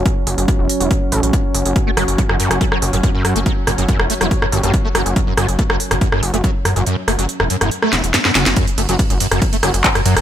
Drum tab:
RD |----------------|----------------|----------------|----------------|
HH |x-oxx-oxx-oxx-ox|x-oxx-oxx-oxx-ox|x-oxx-oxx-oxx-ox|x-oxx-oxx-oxx-ox|
CP |----------------|----------------|----------------|----------------|
SD |----------------|--r--r-r-r----r-|--r--r-r-r----r-|--r--r-r-r----r-|
BD |o---o---o---o---|o---o---o---o---|o---o---o---o---|o---o---o---o---|

RD |----------------|xxxxxxxxxxxxxxxx|
HH |x-oxx-oxx-oxx-ox|xxoxxxoxxxoxxxox|
CP |----------------|------------x---|
SD |--r--r-r-ro-oooo|-------r--r--r-r|
BD |----------------|o---o---o---o---|